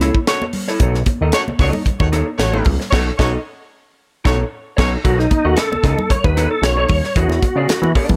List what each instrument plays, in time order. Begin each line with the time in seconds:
Already playing: analog synth bass C#2
0.01 clean electric guitar E4 A4 C#5, snare, closed hi-hat, high conga
0.15 muted clean electric guitar stroke, kick
0.27 horn section A3 F#4 C#5, muted clean electric guitar stroke, snare, closed hi-hat
0.42 muted clean electric guitar stroke, muted conga, high conga
0.53 open hi-hat, low conga
0.68 clean electric guitar E4 A4 C#5, snare
0.80 analog synth bass B1, clean electric guitar D#4 A4 C#5, kick, closed hi-hat, muted conga
0.94 snare
1.06 muted clean electric guitar stroke, kick, closed hi-hat, high conga
1.21 analog synth bass D#2, clean electric guitar D#4 A4 D#5
1.32 horn section A3 F#4 C#5, muted clean electric guitar stroke, snare, closed hi-hat, muted conga
1.47 analog synth bass C#2, muted clean electric guitar stroke, high conga
1.59 analog synth bass C#2, horn section A3 F#4 C#5, clean electric guitar D#4 A4 D#5, kick, snare, open hi-hat
1.73 muted clean electric guitar stroke, high conga, low conga
1.85 analog synth bass D#2, muted clean electric guitar stroke, kick, closed hi-hat, muted conga
2.00 analog synth bass D#2, horn section A3 F#4 C#5, muted clean electric guitar stroke, kick, muted conga
2.12 clean electric guitar D#4 A4 C#5, snare, closed hi-hat, high conga
2.28 muted clean electric guitar stroke
2.38 analog synth bass A1, horn section A3 F#4 C#5, muted clean electric guitar stroke, snare, closed hi-hat
2.52 clean electric guitar D#4 A4 C#5, muted conga, high conga
2.64 analog synth bass C#2, kick, open hi-hat, low conga
2.80 muted clean electric guitar stroke, snare
2.91 analog synth bass B1, horn section A3 F#4 C#5, clean electric guitar D#4 A4 C#5, kick, snare, crash
3.18 analog synth bass B1, horn section A3 F#4 C#5, clean electric guitar D#4 A4 D#5, kick, snare
4.25 analog synth bass B1, horn section A3 F#4 C#5, clean electric guitar D#4 A4 C#5, kick, snare
4.77 analog synth bass B1, horn section A3 F#4 C#5, clean electric guitar D#4 A4 C#5, kick, snare, crash
5.04 analog synth bass B1, clean electric guitar D#4 A4 C#5, tonewheel organ F#4, kick, closed hi-hat, cowbell
5.18 tonewheel organ D#4, snare
5.31 muted clean electric guitar stroke, kick, closed hi-hat, high conga
5.45 analog synth bass D#2, clean electric guitar D#4 A4 D#5, tonewheel organ F#4
5.56 tonewheel organ A4, muted clean electric guitar stroke, snare, closed hi-hat, cowbell, muted conga
5.71 analog synth bass C#2, muted clean electric guitar stroke, muted conga, high conga
5.83 analog synth bass C#2, clean electric guitar D#4 A4 D#5, kick, snare, closed hi-hat, cowbell
5.98 muted clean electric guitar stroke, high conga, low conga
6.10 analog synth bass D#2, tonewheel organ C#5, muted clean electric guitar stroke, kick, closed hi-hat, cowbell, muted conga
6.24 analog synth bass D#2, tonewheel organ B4, muted clean electric guitar stroke, kick, muted conga
6.37 clean electric guitar D#4 A4 C#5, snare, closed hi-hat, high conga
6.51 tonewheel organ A4, muted clean electric guitar stroke
6.62 analog synth bass B1, tonewheel organ C#5, muted clean electric guitar stroke, snare, closed hi-hat, cowbell
6.77 clean electric guitar D#4 A4 C#5
6.88 analog synth bass D#2, muted clean electric guitar stroke, kick, open hi-hat, low conga
7.04 muted clean electric guitar stroke, snare
7.16 analog synth bass E2, clean electric guitar D4 G#4 C#5, tonewheel organ F#4, kick, closed hi-hat, cowbell
7.28 analog synth bass E2, snare, muted conga
7.42 muted clean electric guitar stroke, kick, closed hi-hat, high conga
7.56 analog synth bass C#3, clean electric guitar D4 G#4 D5
7.68 analog synth bass E3, muted clean electric guitar stroke, snare, closed hi-hat, cowbell, muted conga
7.82 analog synth bass E3, muted clean electric guitar stroke, muted conga, high conga
7.95 clean electric guitar D4 G#4 D5, kick, open hi-hat, cowbell
8.09 analog synth bass E2, muted clean electric guitar stroke, kick, high conga, low conga